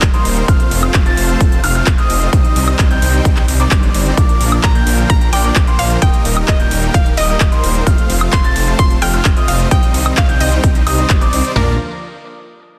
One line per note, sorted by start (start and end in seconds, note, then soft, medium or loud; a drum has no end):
0.00 0.11 D#1 loud
0.00 0.46 D#3 medium
0.00 0.46 G3 medium
0.00 0.45 A#3 medium
0.00 0.47 G4 medium
0.00 kick loud
0.00 clap loud
0.00 closed hi-hat medium
0.14 0.45 G3 medium
0.14 0.45 A#3 medium
0.14 0.46 D#4 medium
0.14 0.45 A#4 medium
0.14 0.45 C5 loud
0.14 0.46 C6 loud
0.14 closed hi-hat soft
0.25 0.44 D#1 medium
0.25 open hi-hat loud
0.25 ride medium
0.37 closed hi-hat soft
0.48 0.57 F1 loud
0.48 4.14 C3 medium
0.48 2.31 F3 medium
0.48 2.31 A3 medium
0.48 1.03 A3 medium
0.48 1.03 C4 medium
0.48 2.31 F4 medium
0.48 1.03 F4 medium
0.48 1.03 C5 medium
0.48 1.03 F5 loud
0.48 1.03 F6 loud
0.48 kick loud
0.48 closed hi-hat medium
0.48 ride medium
0.60 closed hi-hat soft
0.71 0.90 F1 medium
0.71 open hi-hat loud
0.71 ride medium
0.83 high woodblock medium
0.94 1.13 F1 loud
0.94 kick loud
0.94 clap loud
0.94 closed hi-hat medium
0.94 ride medium
1.06 1.61 A3 loud
1.06 1.61 C4 medium
1.06 1.61 F4 medium
1.06 1.61 C5 medium
1.06 1.61 A5 loud
1.06 1.61 A6 loud
1.06 closed hi-hat soft
1.17 1.36 F1 loud
1.17 open hi-hat loud
1.17 ride medium
1.29 closed hi-hat soft
1.41 1.59 F1 medium
1.41 kick loud
1.41 closed hi-hat medium
1.41 ride medium
1.52 closed hi-hat soft
1.64 1.82 F1 loud
1.64 1.72 A3 medium
1.64 1.72 C4 medium
1.64 1.72 F4 medium
1.64 1.72 C5 medium
1.64 1.72 F5 medium
1.64 1.72 F6 loud
1.64 open hi-hat loud
1.64 ride medium
1.75 1.89 A3 medium
1.75 1.89 C4 medium
1.75 1.89 F4 medium
1.75 1.89 C5 medium
1.75 1.89 F5 medium
1.75 1.89 F6 medium
1.75 closed hi-hat soft
1.87 1.96 F1 loud
1.87 kick loud
1.87 clap loud
1.87 closed hi-hat medium
1.87 ride medium
1.98 2.30 A3 loud
1.98 2.30 C4 medium
1.98 2.30 F4 medium
1.98 2.30 C5 medium
1.98 2.30 D#5 loud
1.98 2.30 D#6 loud
1.98 closed hi-hat soft
2.10 2.28 F1 medium
2.10 open hi-hat loud
2.10 ride medium
2.21 closed hi-hat soft
2.33 2.42 C2 loud
2.33 4.16 D#3 medium
2.33 4.16 G3 medium
2.33 2.88 G3 loud
2.33 2.88 C4 medium
2.33 4.16 D#4 medium
2.33 2.88 D#4 medium
2.33 2.88 C5 medium
2.33 2.88 D#5 loud
2.33 kick loud
2.33 closed hi-hat medium
2.33 ride medium
2.45 closed hi-hat soft
2.56 2.74 C2 medium
2.56 open hi-hat loud
2.56 ride medium
2.68 closed hi-hat soft
2.68 high woodblock medium
2.79 2.97 C2 loud
2.79 kick loud
2.79 clap loud
2.79 closed hi-hat medium
2.79 ride medium
2.91 3.45 G3 loud
2.91 3.45 C4 medium
2.91 3.45 D#4 medium
2.91 3.45 C5 medium
2.91 3.45 G5 loud
2.91 3.46 G6 loud
2.91 closed hi-hat soft
3.02 3.21 C2 loud
3.02 open hi-hat medium
3.02 ride medium
3.14 closed hi-hat soft
3.25 3.44 C2 medium
3.25 kick loud
3.25 closed hi-hat medium
3.25 ride medium
3.37 clap soft
3.37 closed hi-hat soft
3.48 3.67 C2 medium
3.48 open hi-hat loud
3.48 ride medium
3.60 4.15 G3 medium
3.60 4.15 C4 medium
3.60 4.15 D#4 medium
3.60 4.15 C5 medium
3.60 4.15 D5 medium
3.60 4.15 D6 loud
3.60 closed hi-hat soft
3.71 3.90 G1 loud
3.71 kick loud
3.71 clap loud
3.71 closed hi-hat medium
3.83 closed hi-hat soft
3.94 4.13 G1 medium
3.94 open hi-hat loud
3.94 ride medium
4.06 closed hi-hat soft
4.17 4.27 A#1 loud
4.17 6.00 D3 medium
4.17 4.72 F3 medium
4.17 6.00 F3 medium
4.17 4.72 A#3 medium
4.17 6.00 A#3 medium
4.17 4.72 D4 medium
4.17 6.00 F4 medium
4.17 4.72 A#4 medium
4.17 4.72 D5 loud
4.17 4.72 D6 loud
4.17 kick loud
4.17 closed hi-hat medium
4.17 ride medium
4.29 closed hi-hat soft
4.41 4.59 A#1 medium
4.41 open hi-hat loud
4.41 ride medium
4.52 closed hi-hat soft
4.52 high woodblock medium
4.63 4.82 A#1 loud
4.63 5.09 A#5 loud
4.63 kick loud
4.63 clap loud
4.63 closed hi-hat medium
4.63 ride medium
4.75 5.30 F3 medium
4.75 5.30 A#3 medium
4.75 5.30 D4 medium
4.75 5.30 A#4 medium
4.75 5.30 G5 loud
4.75 5.30 G6 loud
4.75 closed hi-hat soft
4.87 5.05 A#1 loud
4.87 open hi-hat loud
4.87 ride medium
4.98 closed hi-hat soft
5.10 5.28 A#1 medium
5.10 5.31 A#5 loud
5.10 kick loud
5.10 closed hi-hat medium
5.10 ride medium
5.21 closed hi-hat soft
5.33 5.51 A#1 loud
5.33 5.42 F3 medium
5.33 5.42 A#3 medium
5.33 5.42 D4 medium
5.33 5.42 A#4 medium
5.33 5.42 D5 loud
5.33 5.80 G5 loud
5.33 5.42 D6 loud
5.33 open hi-hat loud
5.33 ride medium
5.44 5.58 F3 medium
5.44 5.58 A#3 medium
5.44 5.58 D4 medium
5.44 5.58 A#4 medium
5.44 5.58 D5 medium
5.44 5.58 D6 loud
5.44 closed hi-hat soft
5.56 5.65 A#1 loud
5.56 kick loud
5.56 clap loud
5.56 closed hi-hat medium
5.56 ride medium
5.67 5.99 F3 loud
5.67 5.99 A#3 medium
5.67 5.99 D4 medium
5.67 5.99 A#4 medium
5.67 5.99 C5 loud
5.67 5.99 C6 loud
5.67 closed hi-hat soft
5.79 5.97 A#1 medium
5.79 5.89 F5 medium
5.79 open hi-hat loud
5.79 ride medium
5.90 closed hi-hat soft
6.02 6.11 D#1 loud
6.02 7.85 D#3 medium
6.02 6.57 G3 medium
6.02 7.85 G3 medium
6.02 6.57 A#3 medium
6.02 7.85 A#3 medium
6.02 6.57 D#4 medium
6.02 7.85 G4 medium
6.02 6.57 A#4 medium
6.02 6.57 D#5 loud
6.02 6.45 G5 loud
6.02 6.57 D#6 loud
6.02 kick loud
6.02 closed hi-hat medium
6.02 ride medium
6.14 closed hi-hat soft
6.25 6.44 D#1 medium
6.25 open hi-hat loud
6.25 ride medium
6.37 high woodblock medium
6.48 6.67 D#1 loud
6.48 6.96 D#5 loud
6.48 kick loud
6.48 clap loud
6.48 closed hi-hat medium
6.48 ride medium
6.60 7.15 G3 loud
6.60 7.15 A#3 medium
6.60 7.15 D#4 medium
6.60 7.15 A#4 medium
6.60 7.15 G5 loud
6.60 7.15 G6 loud
6.60 closed hi-hat soft
6.71 6.90 D#1 loud
6.71 open hi-hat medium
6.71 ride medium
6.83 closed hi-hat soft
6.94 7.13 D#1 medium
6.94 7.18 F5 loud
6.94 kick loud
6.94 closed hi-hat medium
6.94 ride medium
7.06 closed hi-hat soft
7.17 7.36 D#1 loud
7.17 7.26 G3 medium
7.17 7.26 A#3 medium
7.17 7.26 D#4 medium
7.17 7.26 A#4 medium
7.17 7.26 D#5 loud
7.17 7.60 D#5 medium
7.17 7.26 D#6 loud
7.17 open hi-hat loud
7.17 ride medium
7.29 7.43 G3 medium
7.29 7.43 A#3 medium
7.29 7.43 D#4 medium
7.29 7.43 A#4 medium
7.29 7.43 D#5 medium
7.29 7.43 D#6 loud
7.29 closed hi-hat soft
7.40 7.50 D#1 loud
7.40 kick loud
7.40 clap loud
7.40 closed hi-hat medium
7.40 ride medium
7.52 7.84 G3 loud
7.52 7.84 A#3 medium
7.52 7.84 D#4 medium
7.52 7.84 A#4 medium
7.52 7.84 C5 loud
7.52 7.84 C6 loud
7.52 closed hi-hat soft
7.64 7.82 D#1 medium
7.64 open hi-hat medium
7.64 ride medium
7.75 closed hi-hat soft
7.87 7.96 F1 loud
7.87 11.52 C3 medium
7.87 9.69 F3 medium
7.87 9.69 A3 medium
7.87 8.42 A3 medium
7.87 8.42 C4 medium
7.87 9.69 F4 medium
7.87 8.42 F4 medium
7.87 8.42 C5 medium
7.87 8.42 F5 loud
7.87 8.42 F6 loud
7.87 kick loud
7.87 closed hi-hat medium
7.87 ride medium
7.98 closed hi-hat soft
8.10 8.28 F1 medium
8.10 open hi-hat loud
8.10 ride medium
8.21 closed hi-hat soft
8.21 high woodblock medium
8.33 8.51 F1 loud
8.33 8.76 C6 loud
8.33 kick loud
8.33 clap loud
8.33 closed hi-hat medium
8.33 ride medium
8.44 8.99 A3 loud
8.44 8.99 C4 medium
8.44 8.99 F4 medium
8.44 8.99 C5 medium
8.44 8.99 A5 loud
8.44 8.99 A6 loud
8.44 closed hi-hat soft
8.56 8.74 F1 loud
8.56 open hi-hat medium
8.56 ride medium
8.67 closed hi-hat soft
8.79 8.97 F1 medium
8.79 9.03 C6 loud
8.79 kick loud
8.79 closed hi-hat loud
8.79 ride medium
8.90 closed hi-hat soft
9.02 9.21 F1 loud
9.02 9.11 A3 medium
9.02 9.11 C4 medium
9.02 9.11 F4 medium
9.02 9.11 C5 medium
9.02 9.11 F5 loud
9.02 9.50 G5 loud
9.02 9.11 F6 loud
9.02 open hi-hat loud
9.02 ride medium
9.14 9.27 A3 medium
9.14 9.27 C4 medium
9.14 9.27 F4 medium
9.14 9.27 C5 medium
9.14 9.27 F5 loud
9.14 9.27 F6 loud
9.14 closed hi-hat soft
9.25 9.34 F1 loud
9.25 kick loud
9.25 clap loud
9.25 closed hi-hat loud
9.25 ride medium
9.37 9.69 A3 loud
9.37 9.69 C4 medium
9.37 9.69 F4 medium
9.37 9.69 C5 medium
9.37 9.69 D#5 loud
9.37 9.69 D#6 loud
9.37 closed hi-hat soft
9.48 9.67 F1 medium
9.48 9.72 F5 medium
9.48 open hi-hat medium
9.48 ride medium
9.60 closed hi-hat soft
9.71 9.81 C2 loud
9.71 11.54 D#3 medium
9.71 10.26 G3 loud
9.71 11.54 G3 medium
9.71 10.26 C4 medium
9.71 10.26 D#4 medium
9.71 11.54 D#4 medium
9.71 10.26 C5 medium
9.71 10.26 D#5 loud
9.71 10.14 G5 loud
9.71 10.26 D#6 loud
9.71 kick loud
9.71 closed hi-hat loud
9.71 ride medium
9.83 closed hi-hat soft
9.94 10.13 C2 medium
9.94 open hi-hat loud
9.94 ride medium
10.06 closed hi-hat soft
10.06 high woodblock medium
10.17 10.36 C2 loud
10.17 10.28 F5 medium
10.17 kick loud
10.17 clap loud
10.17 closed hi-hat loud
10.17 ride medium
10.29 10.84 G3 loud
10.29 10.84 C4 medium
10.29 10.84 D#4 medium
10.29 10.84 C5 medium
10.29 10.84 G5 loud
10.29 10.84 G6 loud
10.29 closed hi-hat soft
10.40 10.59 C2 loud
10.40 11.29 D#5 medium
10.40 open hi-hat medium
10.40 ride medium
10.52 closed hi-hat soft
10.64 10.82 C2 medium
10.64 kick loud
10.64 closed hi-hat loud
10.64 ride medium
10.75 closed hi-hat soft
10.87 11.05 C2 medium
10.87 10.95 G3 medium
10.87 10.95 C4 medium
10.87 10.95 D#4 medium
10.87 10.95 C5 medium
10.87 10.95 D#5 loud
10.87 10.95 D#6 loud
10.87 open hi-hat loud
10.87 ride medium
10.87 high woodblock medium
10.98 11.12 G3 medium
10.98 11.12 C4 medium
10.98 11.12 D#4 medium
10.98 11.12 C5 medium
10.98 11.12 D#5 medium
10.98 11.12 D#6 loud
10.98 closed hi-hat soft
11.10 11.28 G1 loud
11.10 kick loud
11.10 clap loud
11.10 closed hi-hat loud
11.10 ride medium
11.21 11.53 G3 medium
11.21 11.53 C4 medium
11.21 11.53 D#4 medium
11.21 11.53 C5 medium
11.21 11.53 D5 loud
11.21 11.53 D6 loud
11.21 closed hi-hat soft
11.33 11.42 C2 loud
11.33 open hi-hat medium
11.33 ride medium
11.45 closed hi-hat soft
11.56 11.77 A#1 loud
11.56 11.77 D3 medium
11.56 11.73 F3 medium
11.56 11.77 F3 medium
11.56 11.77 A#3 medium
11.56 11.73 A#3 medium
11.56 11.73 D4 medium
11.56 11.77 F4 medium
11.56 11.73 A#4 medium
11.56 11.77 A#4 medium
11.56 11.73 D5 loud
11.56 11.73 D6 loud
11.56 snare loud
11.56 floor tom loud